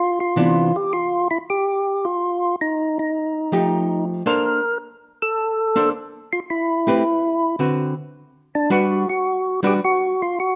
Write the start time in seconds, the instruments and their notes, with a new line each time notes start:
Already playing: tonewheel organ F4
0.20 tonewheel organ F4
0.36 hollow-body jazz guitar C3 E3 B3 D4
0.76 tonewheel organ G4
0.93 tonewheel organ F4
1.31 tonewheel organ E4
1.50 tonewheel organ G4
2.05 tonewheel organ F4
2.61 tonewheel organ D#4
2.99 tonewheel organ D#4
3.52 hollow-body jazz guitar F3 A3 D#4 G4
4.26 hollow-body jazz guitar A#3 D4 A4 C5, tonewheel organ A#4
5.22 tonewheel organ A4
5.76 hollow-body jazz guitar A#3 D4 A4 C5
6.33 tonewheel organ F4
6.50 tonewheel organ E4
6.87 hollow-body jazz guitar A3 C4 G4 B4
7.59 hollow-body jazz guitar D3 C4 F#4 B4
8.55 tonewheel organ D4
8.70 hollow-body jazz guitar G3 D4 F#4 B4, tonewheel organ F#4
9.09 tonewheel organ F#4
9.63 hollow-body jazz guitar G3 D4 F#4 B4, tonewheel organ G4
9.85 tonewheel organ F#4
10.22 tonewheel organ F4
10.40 tonewheel organ F#4